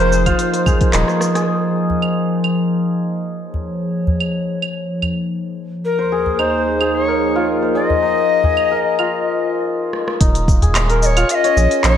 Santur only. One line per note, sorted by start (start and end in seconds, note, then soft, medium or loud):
0.00 0.93 D#4 medium
0.00 0.25 F4 loud
0.00 0.66 G#4 medium
0.00 2.81 A#4 medium
0.00 0.53 C5 medium
0.26 3.62 F4 loud
0.53 3.17 C5 medium
0.66 1.35 G#4 medium
0.93 4.54 D#4 medium
1.35 4.38 G#4 medium
5.99 7.62 C5 medium
6.12 6.81 G#4 medium
6.39 8.02 D#4 medium
6.81 7.75 G#4 medium
7.08 8.71 A#4 medium
7.36 8.98 F4 medium
7.62 10.26 C5 medium
7.75 8.44 G#4 medium
8.02 10.20 D#4 medium
8.44 10.62 G#4 medium
8.71 10.89 A#4 medium
8.99 11.16 F4 medium
10.21 11.84 D#4 medium
10.62 11.57 G#4 medium
10.90 11.97 A#4 medium
11.17 11.97 F4 medium
11.44 11.97 C#5 medium
11.57 11.97 G#4 medium
11.84 11.97 D#4 medium